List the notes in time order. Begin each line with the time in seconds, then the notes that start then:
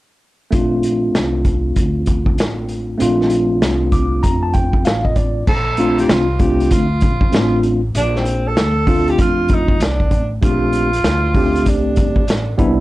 0.51 A#1 A3 C4 D4 F4, kick, closed hi-hat
0.83 closed hi-hat
1.15 C2, snare, closed hi-hat
1.45 kick, closed hi-hat
1.76 D2, kick, closed hi-hat
2.06 kick, closed hi-hat
2.26 kick
2.38 A1, snare, closed hi-hat
2.69 closed hi-hat
2.98 A#1 A3 C4 D4 F4, closed hi-hat
3.21 snare
3.30 closed hi-hat
3.62 C2, snare, closed hi-hat
3.92 D6, kick, closed hi-hat
4.23 F2 A#5, kick, closed hi-hat
4.43 A5
4.54 G5, kick, closed hi-hat
4.73 kick
4.85 A1 F5, snare, closed hi-hat
5.05 D#5, kick
5.16 D5, kick, closed hi-hat
5.47 A#1 A4, kick, crash
5.77 A3 C4 D4 F4, closed hi-hat
5.98 G4, closed hi-hat
6.09 C2 F4, snare, closed hi-hat
6.39 A3 C4 D4 F4 G4, kick, closed hi-hat
6.60 closed hi-hat
6.71 D2 F4, kick, closed hi-hat
7.01 A#1, kick, closed hi-hat
7.21 kick
7.32 A1 A3 C4 D4 F4, snare, closed hi-hat
7.63 closed hi-hat
7.95 A#1 D4, closed hi-hat
8.16 C4, snare
8.25 closed hi-hat
8.48 A4
8.57 D2, snare, closed hi-hat
8.87 A3 C4 D4 F4, kick, open hi-hat
9.08 G4, closed hi-hat
9.18 F2 F4, kick, closed hi-hat
9.48 kick, closed hi-hat
9.54 D#4
9.68 kick
9.80 C2 D4, snare, closed hi-hat
10.00 kick
10.11 A1, kick, closed hi-hat
10.42 A#1 A3 C4 D4 F4 G4, kick, closed hi-hat
10.73 closed hi-hat
10.93 closed hi-hat
11.04 D2, snare, closed hi-hat
11.34 A3 C4 D4 G4, kick, open hi-hat
11.55 closed hi-hat
11.66 C2 D4, kick, closed hi-hat
11.96 G1, kick, closed hi-hat
12.16 kick
12.27 A1, snare, closed hi-hat
12.58 C2 G3 B3 D4 E4, kick, closed hi-hat